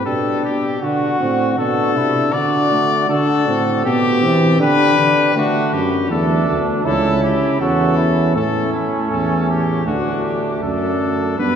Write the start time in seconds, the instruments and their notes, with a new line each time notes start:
0.06 bass trombone B2, euphonium D4, flugelhorn G4, trumpet A4
0.44 bass trombone B2, trumpet G4
0.82 bass trombone D3, euphonium D4, flugelhorn F#4, trumpet F#4
1.20 bass trombone A2, euphonium C4
1.57 bass trombone B2, euphonium D4, flugelhorn F#4, trumpet A4
1.95 bass trombone C3, flugelhorn E4
2.33 bass trombone D3, euphonium D4, flugelhorn F#4, trumpet D5
2.71 euphonium A3
3.09 bass trombone D3, euphonium D4, flugelhorn F#4, trumpet A4
3.47 bass trombone A2, euphonium C4
3.85 bass trombone B2, euphonium B3, flugelhorn G4, trumpet G4
4.23 bass trombone E3, euphonium C4
4.60 bass trombone D3, euphonium D4, flugelhorn G4, trumpet B4
4.98 bass trombone D3
5.35 bass trombone D3, euphonium A3, flugelhorn D4, trumpet F#4
5.73 bass trombone F#2, trumpet G4
6.10 bass trombone E2, euphonium A3, flugelhorn D4, trumpet A4
6.48 bass trombone D2
6.85 bass trombone C#2, euphonium C#4, flugelhorn E4, trumpet A4
7.23 trumpet G4
7.60 bass trombone E2, euphonium C#4, flugelhorn F#4, trumpet A4
7.97 flugelhorn E4
8.35 bass trombone A2, euphonium A3, flugelhorn C#4, trumpet A4
8.73 trumpet E4
9.11 bass trombone E2, trumpet A4
9.49 trumpet G4
9.86 bass trombone D2, euphonium A3, flugelhorn D4, trumpet F#4
10.24 trumpet G4
10.62 bass trombone F#2, flugelhorn D4, trumpet A4
11.38 bass trombone G2, euphonium B3, flugelhorn D4, trumpet B4